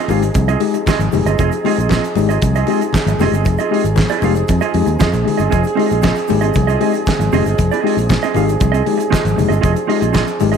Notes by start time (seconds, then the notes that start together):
Already playing: F3 C4 D#4 G#4 D#5
0.08 G#1 G#3 C4 D#4 F4 G4 G#4 F5, open hi-hat, low conga, shaker
0.22 D#4 G4, muted clean electric guitar stroke, closed hi-hat, shaker
0.34 C2 F3, muted clean electric guitar stroke, kick, closed hi-hat, muted conga, shaker
0.48 C4 F4 G#4 D#5, closed hi-hat, shaker
0.60 G#3 D#4 G4, muted clean electric guitar stroke, open hi-hat, muted conga
0.73 D#4 G4, muted clean electric guitar stroke, closed hi-hat, shaker
0.86 C4 D#4 F4 G4 G#4 D#5, kick, snare, clap, high conga, shaker
0.99 G#1 F3, muted clean electric guitar stroke, closed hi-hat, shaker
1.12 F1 G#3 D#4 G4, muted clean electric guitar stroke, open hi-hat, high conga, shaker
1.25 G1 C4 F4 G#4 D#5, closed hi-hat, shaker
1.39 F1 F3 C4 F4 G#4 D#5, kick, closed hi-hat, muted conga, shaker
1.52 D#4 G4, muted clean electric guitar stroke, closed hi-hat, shaker
1.64 G#3 C4 D#4 F4 G4 G#4 D#5, open hi-hat, muted conga
1.78 A#1 C4 F4 G#4 D#5, closed hi-hat, shaker
1.89 F3 C4 F4 G#4 D#5, kick, snare, clap, high conga, shaker
2.04 muted clean electric guitar stroke, closed hi-hat, shaker
2.15 G#1 G#3 D#4 G4, muted clean electric guitar stroke, open hi-hat, low conga, shaker
2.29 C4 F4 G4 G#4 D#5, closed hi-hat, shaker
2.42 C2 F3, muted clean electric guitar stroke, kick, closed hi-hat, muted conga, shaker
2.55 C4 F4 G#4 D#5, closed hi-hat, shaker
2.67 G#3 C4 D#4 F4 G4 G#4 D#5, open hi-hat, muted conga
2.80 D#4 G4, muted clean electric guitar stroke, closed hi-hat, shaker
2.93 D#4 G4, muted clean electric guitar stroke, kick, snare, clap, high conga, shaker
3.06 G#1 F3, muted clean electric guitar stroke, closed hi-hat, shaker
3.19 F1 G#3 C4 D#4 F4 G4 G#4, snare, open hi-hat, high conga, shaker
3.23 D#5
3.32 G1 C4 F4 G#4 D#5, closed hi-hat, shaker
3.45 F1 F3, muted clean electric guitar stroke, kick, closed hi-hat, muted conga, shaker
3.58 C4 D#4 F4 G4 G#4 D#5, closed hi-hat, shaker
3.71 G#3 C4 D#4 F4 G4 G#4 D#5, open hi-hat
3.84 G#1, closed hi-hat, shaker
3.96 F3, muted clean electric guitar stroke, kick, snare, clap, high conga, shaker
4.09 C4 F4 G#4 D#5, closed hi-hat, shaker
4.22 F1 G#3 C4 D#4 F4 G4 G#4 F5, open hi-hat, low conga, shaker
4.35 D#4 G4, muted clean electric guitar stroke, closed hi-hat, shaker
4.48 F2 F3, muted clean electric guitar stroke, kick, closed hi-hat, muted conga, shaker
4.61 C4 F4 G#4 D#5, closed hi-hat, shaker
4.74 F2 G#3 D#4 G4, muted clean electric guitar stroke, open hi-hat, muted conga
4.86 D#2 D#4 G4, muted clean electric guitar stroke, closed hi-hat, shaker
4.99 F2 C4 D#4 F4 G4 G#4 D#5, kick, snare, clap, high conga, shaker
5.12 A#1 F3, muted clean electric guitar stroke, closed hi-hat, shaker
5.24 G#3 D#4 G4, muted clean electric guitar stroke, open hi-hat, high conga
5.37 G1 C4 F4 G#4 D#5, closed hi-hat, shaker
5.50 F1 F3 C4 D4 F4 G#4 D#5, kick, closed hi-hat, muted conga, shaker
5.64 D#4 G4, muted clean electric guitar stroke, closed hi-hat, shaker
5.75 G#3 C4 D#4 F4 G4 G#4 D#5, open hi-hat, muted conga
5.89 A#1 C4 F4 G#4 D#5, closed hi-hat, shaker
6.02 F3 C4 F4 G#4 D#5, kick, snare, clap, high conga, shaker
6.15 muted clean electric guitar stroke, closed hi-hat, shaker
6.28 G#1 G#3 D#4 G4, muted clean electric guitar stroke, open hi-hat, low conga, shaker
6.41 C4 D#4 F4 G4 G#4 D#5, closed hi-hat, shaker
6.54 C2 F3, muted clean electric guitar stroke, kick, closed hi-hat, muted conga, shaker
6.67 C4 F4 G#4 D#5, closed hi-hat, shaker
6.80 G#3 C4 D#4 F4 G4 G#4 D#5, open hi-hat, muted conga
6.93 D#4 G4, muted clean electric guitar stroke, closed hi-hat, shaker
7.06 D#4 G4, muted clean electric guitar stroke, kick, snare, clap, high conga, shaker
7.19 G#1 F3, muted clean electric guitar stroke, closed hi-hat, shaker
7.32 F1 G#3 C4 D#4 F4 G4 G#4 D#5, open hi-hat, high conga, shaker
7.46 G1 C4 F4 G#4 D#5, closed hi-hat, shaker
7.58 F1 F3, muted clean electric guitar stroke, kick, closed hi-hat, muted conga, shaker
7.71 C4 D#4 F4 G4 G#4 D#5, closed hi-hat, shaker
7.84 G#3 C4 D#4 F4 G4 G#4 D#5, open hi-hat
7.97 A#1, muted clean electric guitar stroke, closed hi-hat, shaker
8.09 F3, muted clean electric guitar stroke, kick, snare, clap, high conga, shaker
8.23 C4 F4 G#4 D#5, closed hi-hat, shaker
8.34 G#1 G#3 C4 D#4 F4 G4 G#4 F5, open hi-hat, low conga, shaker
8.48 D#4 G4, muted clean electric guitar stroke, closed hi-hat, shaker
8.60 C2 F3, muted clean electric guitar stroke, kick, closed hi-hat, muted conga, shaker
8.72 C4 F4 G#4 D#5, closed hi-hat, shaker
8.84 G#3 D#4 G4, muted clean electric guitar stroke, open hi-hat, muted conga
8.98 D#4 G4, muted clean electric guitar stroke, closed hi-hat, shaker
9.10 C4 D#4 F4 G4 G#4 D#5, kick, snare, clap, high conga, shaker
9.23 G#1 F3, muted clean electric guitar stroke, closed hi-hat, shaker
9.36 F1 G#3 D#4 G4, muted clean electric guitar stroke, open hi-hat, high conga, shaker
9.49 G1 C4 F4 G#4 D#5, closed hi-hat, shaker
9.61 F1 F3 C4 F4 G#4 D#5, kick, closed hi-hat, muted conga, shaker
9.74 D#4 G4, muted clean electric guitar stroke, closed hi-hat, shaker
9.87 G#3 C4 D#4 F4 G4 G#4 D#5, open hi-hat
10.00 A#1 C4 F4 G#4 D#5, closed hi-hat, shaker
10.12 F3 C4 F4 G#4 D#5, kick, snare, clap, high conga, shaker
10.26 muted clean electric guitar stroke, closed hi-hat, shaker
10.39 G#1 G#3 D#4 G4, muted clean electric guitar stroke, open hi-hat, low conga, shaker
10.52 C4 D#4 F4 G4 G#4 D#5, closed hi-hat, shaker